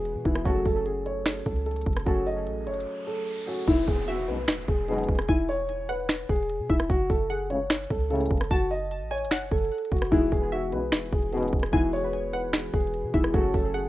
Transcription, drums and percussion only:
0.05 closed hi-hat
0.25 kick, closed hi-hat
0.35 cross-stick
0.45 kick, closed hi-hat
0.65 kick, open hi-hat
0.86 closed hi-hat
1.06 closed hi-hat
1.26 finger snap, cross-stick, snare, closed hi-hat
1.33 closed hi-hat
1.39 closed hi-hat
1.46 kick, closed hi-hat
1.56 closed hi-hat
1.66 closed hi-hat
1.71 closed hi-hat
1.76 closed hi-hat
1.81 closed hi-hat
1.86 kick, closed hi-hat
1.93 cross-stick, closed hi-hat
2.00 closed hi-hat
2.06 kick, closed hi-hat
2.26 open hi-hat
2.47 closed hi-hat
2.67 closed hi-hat
2.74 closed hi-hat
2.80 closed hi-hat
3.67 kick, closed hi-hat, crash
3.88 kick, open hi-hat
4.08 closed hi-hat
4.28 closed hi-hat
4.48 finger snap, cross-stick, snare, closed hi-hat
4.55 closed hi-hat
4.62 closed hi-hat
4.68 kick, closed hi-hat
4.78 closed hi-hat
4.88 closed hi-hat
4.93 closed hi-hat
4.98 closed hi-hat
5.03 closed hi-hat
5.08 kick, closed hi-hat
5.15 cross-stick, closed hi-hat
5.22 closed hi-hat
5.29 kick, closed hi-hat
5.49 open hi-hat
5.69 closed hi-hat
5.89 closed hi-hat
6.09 finger snap, cross-stick, snare, closed hi-hat
6.29 kick, closed hi-hat
6.36 closed hi-hat
6.43 closed hi-hat
6.50 closed hi-hat
6.70 kick, closed hi-hat
6.80 cross-stick
6.90 kick, closed hi-hat
7.10 kick, open hi-hat
7.30 closed hi-hat
7.50 closed hi-hat
7.70 finger snap, cross-stick, snare, closed hi-hat
7.77 closed hi-hat
7.84 closed hi-hat
7.90 kick, closed hi-hat
8.00 closed hi-hat
8.11 closed hi-hat
8.16 closed hi-hat
8.21 closed hi-hat
8.26 closed hi-hat
8.31 kick, closed hi-hat
8.37 cross-stick, closed hi-hat
8.44 closed hi-hat
8.51 kick, closed hi-hat
8.71 open hi-hat
8.91 closed hi-hat
9.11 closed hi-hat
9.18 closed hi-hat
9.25 closed hi-hat
9.31 finger snap, snare, closed hi-hat
9.51 kick, closed hi-hat
9.58 closed hi-hat
9.65 closed hi-hat
9.72 closed hi-hat
9.78 closed hi-hat
9.85 closed hi-hat
9.92 kick, closed hi-hat
9.97 closed hi-hat
9.98 closed hi-hat
10.02 cross-stick, closed hi-hat
10.05 closed hi-hat
10.07 closed hi-hat
10.12 kick, closed hi-hat
10.32 kick, open hi-hat
10.52 closed hi-hat
10.72 closed hi-hat
10.92 finger snap, cross-stick, snare, closed hi-hat
10.99 closed hi-hat
11.06 closed hi-hat
11.13 kick, closed hi-hat
11.23 closed hi-hat
11.33 closed hi-hat
11.38 closed hi-hat
11.43 closed hi-hat
11.48 closed hi-hat
11.53 kick, closed hi-hat
11.60 cross-stick, closed hi-hat
11.66 closed hi-hat
11.73 kick, closed hi-hat
11.93 open hi-hat
12.13 closed hi-hat
12.34 closed hi-hat
12.53 finger snap, cross-stick, snare, closed hi-hat
12.74 kick, closed hi-hat
12.80 closed hi-hat
12.87 closed hi-hat
12.94 closed hi-hat
13.14 kick, closed hi-hat
13.24 cross-stick
13.34 kick, closed hi-hat
13.54 kick, open hi-hat
13.74 closed hi-hat

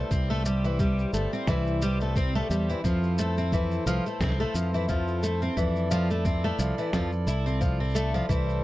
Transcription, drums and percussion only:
0.11 kick, shaker
0.30 shaker
0.34 shaker
0.40 shaker
0.45 shaker
0.64 shaker
0.79 kick, shaker
0.99 shaker
1.13 shaker
1.33 shaker
1.47 kick, snare, shaker
1.67 shaker
1.81 shaker
2.01 shaker
2.16 kick, shaker
2.35 shaker
2.50 shaker
2.69 shaker
2.84 kick, shaker
3.03 shaker
3.18 shaker
3.38 shaker
3.52 kick, shaker
3.72 shaker
3.87 shaker
4.06 shaker
4.20 kick, snare, shaker
4.24 snare
4.27 snare
4.30 snare
4.32 snare
4.37 snare, shaker
4.54 shaker
4.74 shaker
4.88 kick, shaker
5.08 shaker
5.23 shaker
5.42 shaker
5.57 kick, shaker
5.76 shaker
5.91 shaker
6.10 shaker
6.25 kick, shaker
6.44 shaker
6.59 shaker
6.78 shaker
6.93 kick, snare, shaker
7.12 shaker
7.27 shaker
7.46 shaker
7.61 kick, shaker
7.80 shaker
7.83 shaker
7.88 shaker
7.91 shaker
7.93 shaker
7.95 shaker
8.15 shaker
8.29 kick, shaker
8.49 shaker

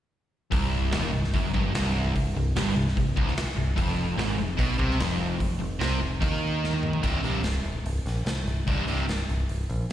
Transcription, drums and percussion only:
0.52 kick, open hi-hat
0.92 snare, open hi-hat
1.24 snare
1.34 kick, open hi-hat
1.54 kick
1.75 snare, open hi-hat
2.16 kick, open hi-hat
2.56 snare, open hi-hat
2.88 snare
2.97 kick, open hi-hat
3.17 kick
3.28 snare
3.37 snare, open hi-hat
3.78 kick, open hi-hat
4.19 snare, open hi-hat
4.59 kick, open hi-hat
4.79 kick
4.90 snare
5.00 snare, open hi-hat
5.40 kick, open hi-hat
5.81 snare, open hi-hat
6.22 kick, open hi-hat
6.64 snare
6.73 high tom
6.83 mid tom
6.93 floor tom
7.03 kick, crash
7.24 open hi-hat
7.44 snare, open hi-hat
7.65 open hi-hat
7.86 open hi-hat
8.06 snare, open hi-hat
8.26 snare, open hi-hat
8.47 open hi-hat
8.68 kick, open hi-hat
8.88 open hi-hat
9.09 snare, open hi-hat
9.29 open hi-hat
9.49 open hi-hat
9.70 open hi-hat

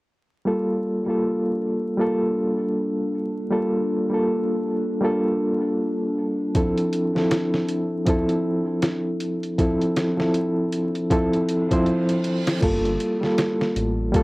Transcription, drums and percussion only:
6.55 kick, closed hi-hat
6.77 closed hi-hat
6.93 closed hi-hat
7.16 snare
7.31 snare, closed hi-hat
7.54 snare
7.68 closed hi-hat
8.06 kick, closed hi-hat
8.29 closed hi-hat
8.82 snare, closed hi-hat
9.20 closed hi-hat
9.43 closed hi-hat
9.58 kick, closed hi-hat
9.82 closed hi-hat
9.96 snare, closed hi-hat
10.20 snare
10.34 closed hi-hat
10.73 closed hi-hat
10.95 closed hi-hat
11.10 kick, closed hi-hat
11.33 closed hi-hat
11.49 closed hi-hat
11.71 kick, closed hi-hat
11.86 closed hi-hat
12.09 closed hi-hat
12.24 closed hi-hat
12.47 snare, closed hi-hat
12.62 kick, closed hi-hat, crash
12.85 closed hi-hat
13.00 closed hi-hat
13.23 snare
13.38 snare, closed hi-hat
13.61 snare
13.76 closed hi-hat
14.14 kick, closed hi-hat

